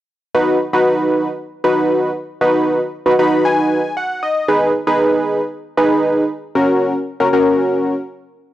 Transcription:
0.35 D#4 F#4 B4
0.73 D#4 F#4 B4
1.64 D#4 F#4 B4
2.41 D#4 F#4 B4
3.06 D#4 F#4 B4
3.19 D#4 F#4 B4 B5
3.45 G#5
3.97 F#5
4.23 D#5
4.48 D#4 G#4 B4
4.87 D#4 G#4 B4
5.77 D#4 G#4 B4
6.55 C#4 F#4 A#4
7.20 C#4 F#4 A#4
7.33 C#4 F#4 A#4

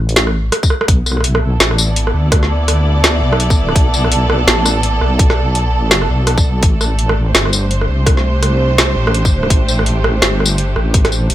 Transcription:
Already playing: A1
0.09 closed hi-hat
0.16 snare, closed hi-hat
0.27 cross-stick
0.52 cross-stick, closed hi-hat
0.63 kick, tambourine
0.70 cross-stick
0.81 cross-stick
0.88 B1 B3, kick, closed hi-hat
1.03 E4, cross-stick, tambourine
1.12 cross-stick
1.17 cross-stick
1.21 cross-stick, closed hi-hat
1.35 cross-stick
1.40 A4
1.60 A1, snare, closed hi-hat
1.71 D5, cross-stick
1.78 tambourine
1.96 closed hi-hat
2.07 cross-stick
2.14 D2
2.32 kick, cross-stick, closed hi-hat
2.43 snare
2.68 cross-stick, closed hi-hat
3.04 cross-stick, snare, closed hi-hat
3.22 B1
3.33 cross-stick
3.40 closed hi-hat
3.50 kick, tambourine
3.69 cross-stick
3.76 B1, kick, closed hi-hat
3.94 tambourine
4.04 cross-stick
4.12 closed hi-hat
4.30 cross-stick
4.47 A1, snare, closed hi-hat
4.65 cross-stick, tambourine
4.83 closed hi-hat
5.01 B1, cross-stick
5.19 kick, closed hi-hat
5.30 cross-stick, snare
5.55 closed hi-hat
5.91 snare, closed hi-hat
6.02 cross-stick
6.09 B1
6.27 cross-stick, closed hi-hat
6.38 kick, tambourine
6.63 A1 A3, kick, closed hi-hat
6.81 G4, cross-stick, tambourine
6.88 D4
6.99 closed hi-hat
7.09 cross-stick
7.27 C5
7.35 G1, snare, closed hi-hat
7.45 cross-stick
7.53 tambourine
7.71 closed hi-hat
7.81 cross-stick
7.89 C2
8.06 kick, cross-stick, closed hi-hat
8.17 snare
8.43 cross-stick, closed hi-hat
8.78 cross-stick, snare, closed hi-hat
8.96 A1
9.07 cross-stick
9.14 closed hi-hat
9.25 kick, tambourine
9.43 cross-stick
9.50 A1, kick, closed hi-hat
9.68 tambourine
9.79 cross-stick
9.86 closed hi-hat
10.04 cross-stick
10.22 G1, snare, closed hi-hat
10.40 cross-stick
10.46 tambourine
10.58 closed hi-hat
10.76 A1, cross-stick
10.94 kick, closed hi-hat
11.05 cross-stick, snare, closed hi-hat
11.12 tambourine
11.30 A1, closed hi-hat

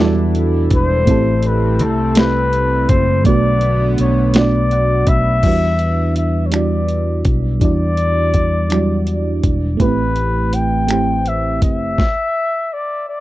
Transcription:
Already playing: E2 B2 E3 G3 D4 E4 B4 D5 F#5
0.00 E4 F#4 A4
0.35 closed hi-hat
0.70 E1, kick, closed hi-hat
0.75 C5
1.05 A1 G3 A3 C4 E4, kick, closed hi-hat
1.09 G4 A4
1.43 closed hi-hat
1.47 B4
1.79 C2, closed hi-hat
1.84 A4
2.14 A3 C4 E4 G4, snare, closed hi-hat
2.19 B4
2.53 closed hi-hat
2.89 F#1 C5, kick, closed hi-hat
3.24 B1 D3 A3 B3 D4 D5, kick, closed hi-hat
3.28 F#4 B4
3.61 closed hi-hat
3.98 B1 C#5, closed hi-hat
4.33 A3 B3 D4 F#4 D5, snare, closed hi-hat
4.38 D5
4.71 F#5, closed hi-hat
5.07 B1 E5 B5, kick, closed hi-hat
5.42 E2 G3 D4 E4 F#4, kick, closed hi-hat, crash
5.48 B4
5.79 closed hi-hat
6.16 E5, closed hi-hat
6.46 C#5
6.51 G3 D4 E4 F#4 D5, finger snap, closed hi-hat
6.56 D5
6.88 closed hi-hat
7.25 B1, kick, closed hi-hat
7.60 E2 G3 D4 E4 F#4 D5, kick, closed hi-hat
7.65 D5
7.97 closed hi-hat
8.34 kick, closed hi-hat
8.69 F#3 D4 E4 F#4, finger snap, closed hi-hat
8.73 G3 D5
9.07 closed hi-hat
9.43 E1, kick, closed hi-hat
9.77 A1 A3 B3 E4 G4 B4, kick, closed hi-hat
9.82 C4 B4
10.16 closed hi-hat
10.53 G5, closed hi-hat
10.88 A3 C4 E4, finger snap, closed hi-hat
10.92 G4 C5
11.26 E5, closed hi-hat
11.62 F#1 E5, kick, closed hi-hat
11.98 kick, snare
12.73 D5
13.09 D5

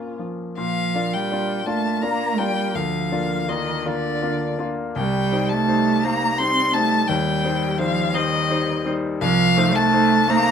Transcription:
Already playing: A#2 A#3 C4 C#4 F4
0.19 F3
0.58 A#2 F3 F5
0.94 A#3 D4 F4
1.14 G3 G5
1.31 A#3 D4 F4
1.66 A3 A#3 D4 F4 A5
2.02 A#3 D4 F4 A#5
2.38 G3 A#3 D4 F4 G5
2.75 D2 F3 F5
3.12 A#3 D4 F4
3.48 D#3 A#3 D4 F4 D#5
3.85 D3 A#3 D4 F4 D5
4.22 A#3 D4 F4
4.59 A#3 D4 F4
4.96 C2 G3 G5
5.32 G3 D#4 C5
5.50 A3 A5
5.68 G3 D#4 C5
6.04 G3 A#3 D#4 C5 A#5
6.38 G3 C4 D#4 C5 C6
6.73 G3 A3 D#4 C5 A5
7.08 D#2 G3 G5
7.44 G3 D#4 C5
7.78 F3 G3 D#4 C5 F5
8.13 D#3 G3 D#4 C5 D#5
8.50 G3 D#4 C5
8.86 G3 D#4 C5
9.21 C2 F3 F5
9.57 A3 D#4 C5
9.75 A3 A5
9.93 A3 D#4 C5
10.28 A3 A#3 D#4 C5 A#5

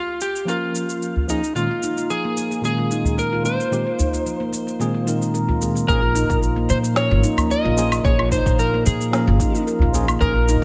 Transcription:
Already playing: F4
0.21 G4, shaker
0.36 shaker
0.45 F3 A#3 C#4 F4, shaker
0.49 A#4
0.75 shaker
0.89 shaker
1.02 shaker
1.16 udu
1.28 F3 A#3 C#4 D#4 G#4, shaker
1.44 shaker
1.55 A#2 D#3 G#3 A#3 C#4 F4, shaker
1.71 F4
1.83 D#4, shaker
1.97 F4, shaker
2.10 F3 G#4, shaker
2.25 A#3
2.37 A#3, shaker
2.51 A#3, shaker
2.61 A#2 D#3 G#3 A#3 C#4 G#4, shaker
2.65 G#4
2.78 F4
2.91 D#4, shaker
3.04 A#3, udu, shaker
3.18 A#4, shaker
3.33 F4
3.44 A#2 D#3 G#3 A#3 C#4 F4 C5, shaker
3.60 A#3, shaker
3.71 A#2 D#3 G#3 A#3 C4 G4, shaker
3.87 F4
3.99 D#4, udu, shaker
4.13 F4, shaker
4.26 F3, shaker
4.40 A#3
4.53 A#3, shaker
4.67 A#3, shaker
4.79 A#2 D#3 G#3 A#3 C4 G#4, shaker
4.94 F4
5.06 A#2 D#3 G#3 C4 D#4 A#4, shaker
5.21 A#3, shaker
5.34 A#4, shaker
5.49 F4, udu
5.61 A#2 D#3 G#3 A#3 C4 G#4, shaker
5.75 A#3, shaker
5.88 A#1 F3 A#3 C#4 G#4 A#4, kick, shaker
6.02 F4
6.15 D#4, shaker
6.30 A#1 F4, kick, shaker
6.42 F3, shaker
6.56 A#3
6.69 A#2 A#3 C5, shaker
6.83 A#3, shaker
6.94 F3 A#3 C#4 C#5, snare, shaker
6.98 A#4
7.11 G#1 F4
7.24 D#4, shaker
7.37 A#3, udu, low woodblock, shaker
7.50 A#4 D#5, shaker
7.65 A#1 F4
7.77 F3 A#3 C#4 G#4, shaker
7.92 A#3, low woodblock, shaker
8.04 A#1 F3 A#3 C#4 G#4 C#5, kick, shaker
8.19 F4, low woodblock
8.32 D#4 C5, kick, shaker
8.46 A#1 F4, kick, shaker
8.59 F3 A#4, shaker
8.74 A#3
8.86 A#2 A#3 G#4, shaker
9.01 A#3, shaker
9.11 F3 A#3 C#4 A#4, snare, shaker
9.27 G#1 F4
9.40 D#4, kick, shaker
9.55 A#3, shaker
9.67 A#4, shaker
9.79 A#1 F4, udu
9.93 F3 A#3 C#4 G#4, shaker
10.08 A#3, low woodblock, shaker
10.19 A#1 F3 A#3 C#4 D#4 G#4 A#4, kick, shaker
10.36 F4
10.49 D#4, shaker

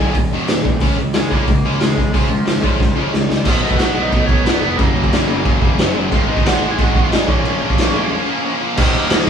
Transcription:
Already playing: G#4 G#5
0.00 D#2 A#2 D#3
0.14 D#1 D#2 A#2, kick, open hi-hat
0.33 D#1 D#2 A#2 D#3
0.48 D#1 D#2 A#2, snare, open hi-hat
0.65 D#1 D#2 A#2, kick
0.80 C#2 C#3 G#3 C#4, kick, open hi-hat
0.98 C#2 C#3 G#3
1.13 C#2 C#3 G#3, snare, open hi-hat
1.18 G#4
1.30 C#3 G#3 A#3 C#4 A#4, kick
1.47 C#2 C#3 G#3, kick, open hi-hat
1.65 C#2 C#3 G#3 C#4
1.80 C#2 C#3 G#3 G#4, snare, open hi-hat
1.97 C#2 C#3 G#3, kick
2.14 C#2 C#3 F3 G#3 C#4 F4, kick, open hi-hat
2.30 C#2 C#3 G#3
2.45 C#2 C#3 G#3, snare, open hi-hat
2.62 C#3 G#3 C#4, kick
2.79 C#2 C#3 G#3, kick, snare
2.95 C#2 C#3 G#3 C#4
3.13 C#2 C#3 G#3, snare
3.29 C#2 C#3 G#3, snare
3.44 B1 B2 F#3 B3 F5, kick, crash
3.49 F4
3.62 B1 B2 F#3 B3 D#4 D#5
3.71 kick
3.77 B1 B2 F#3 B3 F#4 F#5, snare, crash
3.94 B1 B2 F#3 B3
4.02 D#4 D#5
4.11 B1 B2 F#3 B3, kick, crash
4.26 B1 B2 F#3 B3 C#4 C#5, kick
4.44 B1 B2 F#3 B3 B4, snare, crash
4.62 F1 B2 F#3 B3
4.77 F#1 F#2 C#3 F#3 A#3 A#4, kick, crash
4.95 F#1 F#2 C#3 F#3
5.04 kick
5.12 F#1 F#2 C#3 F#3, snare, crash
5.28 F#1 F#2 C#3 F#3
5.45 F#1 F#2 C#3 F#3, kick, crash
5.61 F#1 F#2 C#3 F#3, kick
5.77 F#1 F#2 C#3 F#3, snare, crash
5.94 F#1 F#2 C#3 F#3
6.11 G#1 G#2 D#3 G#3 F4 F5, kick, crash
6.28 G#1 G#2 D#3 G#3 D#4 D#5
6.37 kick
6.43 G#1 G#2 D#3 G#3, snare, crash
6.47 F#4 F#5
6.61 G#1 G#2 D#3 G#3
6.71 G#4 G#5
6.78 G#1 G#2 D#3 G#3 F#4 F#5, kick, crash
6.95 G#1 G#2 D#3 G#3, kick
7.04 F4 F5
7.11 G#1 G#2 D#3 G#3 D#4 D#5, snare, crash
7.28 A#1 A#2 F3 A#3 C#4 C#5, kick
7.44 A#1 A#2 F3 A#3, crash
7.61 A#1 A#2 F3 A#3
7.70 kick
7.77 A#1 A#2 F3 A#3, snare, crash
7.94 A#1 A#2 F3 A#3
8.10 A#2 F3 A#3
8.27 A#2 F3 A#3
8.44 A#2 F3 A#3
8.61 A#2 F3 A#3
8.77 D#1 D#2 A#2 D#3 F#3 A#3 A#4, kick, crash
8.82 D#4
8.94 D#1 A#3 A#4, crash
9.10 D#1, snare, crash
9.26 D#4

